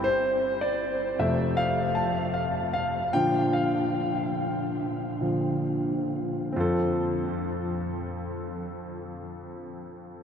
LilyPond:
\new Staff \with { instrumentName = "Grand piano" } { \time 4/4 \key f \major \tempo 4 = 71 c''8. d''8. <f, c a e''>8 f''8 a''8 f''8 f''8 | <bes, d f g''>8 f''2 <bes, d f>8 r4 | <f, c' f' a'>1 | }